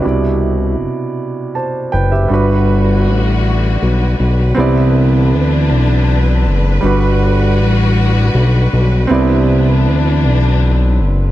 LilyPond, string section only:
\new Staff \with { instrumentName = "String section" } { \clef bass \time 6/8 \key g \major \tempo 4. = 53 << { r2. | b'2.~ | b'2.~ | b'2.~ |
b'2. | } \\ { r2. | <d g fis'>2. | <d e d'>2. | <d g fis'>2. |
<d e d'>2. | } >> }